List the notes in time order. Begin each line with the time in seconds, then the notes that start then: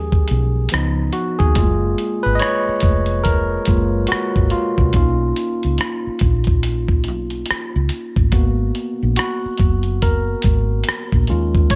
Already playing: D#2 F3 G#3 C#4 G4 G#4
0.12 kick
0.28 B1, closed hi-hat
0.69 F3 B3, closed hi-hat
0.73 C#2 D#4, cross-stick
1.13 F#4, closed hi-hat
1.39 D#2 G#4, kick
1.55 F#1 G#3 A#3 F4, kick, closed hi-hat
1.98 closed hi-hat
2.23 G#1 B4
2.35 D#5
2.39 C#5, cross-stick, closed hi-hat
2.68 muted fretless electric bass stroke
2.80 F1, kick, closed hi-hat
3.06 closed hi-hat
3.24 A#4, kick, closed hi-hat
3.65 F#1 G#3 A#3 F4, kick, closed hi-hat
4.07 F#4, closed hi-hat
4.12 muted fretless electric bass stroke, cross-stick
4.36 G#1, kick
4.50 F4, closed hi-hat
4.78 C2, kick
4.93 B1 A#3 C#4 D#4 F4, kick, closed hi-hat
5.36 closed hi-hat
5.63 C#2, closed hi-hat
5.78 cross-stick, closed hi-hat
6.07 muted fretless electric bass stroke
6.19 A#1, kick, closed hi-hat
6.44 kick, closed hi-hat
6.63 closed hi-hat
6.88 kick
7.04 closed hi-hat
7.08 B1
7.30 closed hi-hat
7.46 closed hi-hat
7.50 muted fretless electric bass stroke, cross-stick
7.76 C#2
7.89 closed hi-hat
8.16 A1, kick
8.32 G#1 A#3 B3 F#4, kick, closed hi-hat
8.75 closed hi-hat
9.03 A#1
9.16 F#4, cross-stick, closed hi-hat
9.45 muted fretless electric bass stroke
9.57 F#1, kick, closed hi-hat
9.83 closed hi-hat
10.02 A#4, kick, closed hi-hat
10.42 G#1, kick, closed hi-hat
10.84 closed hi-hat
10.89 muted fretless electric bass stroke, cross-stick
11.12 A#1, kick
11.27 D#2 G#3 C#4 F4, closed hi-hat
11.55 kick
11.70 C#5, kick, closed hi-hat